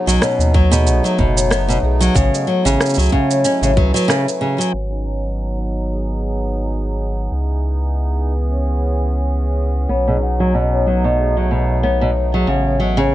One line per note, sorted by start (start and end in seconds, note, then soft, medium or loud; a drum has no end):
0.00 7.32 F#3 medium
0.00 2.99 B3 medium
0.00 0.62 C#4 medium
0.00 2.15 D#4 medium
0.07 0.19 B1 medium
0.07 0.20 F#3 loud
0.07 shaker medium
0.21 0.53 B2 medium
0.21 0.39 C#5 medium
0.21 cross-stick medium
0.21 shaker soft
0.39 0.88 D#2 medium
0.39 shaker soft
0.54 0.71 F#3 medium
0.54 0.72 C#5 medium
0.54 kick medium
0.72 1.02 B2 medium
0.72 4.73 A3 medium
0.72 0.86 G#4 medium
0.72 shaker medium
0.86 1.01 B1 medium
0.86 0.97 F#5 medium
0.86 shaker soft
1.04 1.17 F#3 medium
1.04 1.18 C#5 medium
1.04 shaker soft
1.18 1.79 F#1 medium
1.18 1.50 B2 medium
1.18 1.37 D#5 medium
1.18 kick medium
1.37 1.50 C#5 medium
1.37 shaker medium
1.50 1.67 B3 medium
1.50 cross-stick medium
1.50 shaker medium
1.69 1.77 B2 medium
1.69 1.83 C#5 medium
1.69 shaker soft
1.83 2.09 B1 medium
1.83 2.01 G#4 medium
2.01 2.14 F#3 loud
2.01 2.10 F#5 medium
2.01 shaker medium
2.15 2.30 A1 loud
2.15 2.46 C#3 medium
2.15 2.33 C#5 medium
2.15 kick loud
2.15 shaker medium
2.34 2.47 D#5 medium
2.34 shaker soft
2.47 2.64 F#3 medium
2.47 2.65 C#5 loud
2.60 4.73 E4 medium
2.65 2.77 A1 medium
2.65 2.96 C#3 medium
2.65 shaker medium
2.81 2.98 C#5 medium
2.81 cross-stick medium
2.81 shaker soft
2.86 5.59 C#4 medium
2.86 shaker soft
2.90 shaker soft
2.94 3.09 C#2 loud
2.94 3.11 F#3 medium
2.94 shaker soft
2.99 3.13 G#4 medium
2.99 shaker soft
3.02 shaker soft
3.05 shaker soft
3.12 3.43 C#3 medium
3.12 3.24 F#5 medium
3.12 kick medium
3.31 3.45 C#5 medium
3.31 shaker medium
3.45 3.61 C#4 medium
3.45 3.62 D#5 medium
3.45 shaker medium
3.62 3.78 A1 medium
3.62 3.71 C#3 medium
3.62 3.77 C#5 medium
3.62 shaker soft
3.77 3.91 C#2 loud
3.77 3.93 F#3 medium
3.77 3.95 B4 medium
3.77 kick medium
3.94 4.07 F#3 medium
3.94 4.09 B4 medium
3.94 shaker medium
4.08 4.25 C#3 loud
4.08 4.27 C#5 medium
4.08 cross-stick medium
4.08 shaker soft
4.29 4.41 B4 medium
4.29 shaker soft
4.41 4.57 C#3 medium
4.41 4.58 G#5 medium
4.58 4.72 F#3 medium
4.58 4.68 G#5 medium
4.58 shaker medium
4.74 7.29 G#1 medium
4.91 8.33 D#4 medium
5.06 13.15 B3 medium
5.92 9.90 G#4 medium
7.31 9.87 C#2 medium
7.31 9.89 E3 medium
8.49 10.94 C#4 medium
9.89 12.45 B1 medium
9.89 13.15 F#3 medium
9.89 10.06 B3 medium
9.89 10.07 C#5 medium
10.08 10.16 B2 medium
10.08 10.22 G#4 medium
10.12 12.48 D#4 medium
10.23 10.33 F#5 medium
10.40 10.53 F#3 medium
10.40 10.54 C#5 medium
10.54 10.85 B2 medium
10.73 10.86 C#5 medium
10.87 11.03 F#3 medium
10.96 13.15 A3 medium
11.04 11.35 B2 medium
11.04 11.19 C#5 medium
11.20 11.36 G#4 medium
11.36 11.50 F#3 medium
11.36 11.45 F#5 medium
11.51 11.82 B2 medium
11.51 11.68 C#5 medium
11.69 11.83 D#5 medium
11.83 12.00 B3 medium
11.83 12.01 C#5 medium
12.01 12.10 B2 medium
12.16 12.33 C#5 medium
12.34 12.47 F#3 medium
12.34 12.47 G#4 medium
12.47 13.15 A1 medium
12.47 12.78 C#3 medium
12.47 12.59 F#5 medium
12.63 13.15 C#4 medium
12.68 12.80 C#5 medium
12.80 12.96 F#3 medium
12.97 13.15 C#3 medium
12.97 13.12 C#5 medium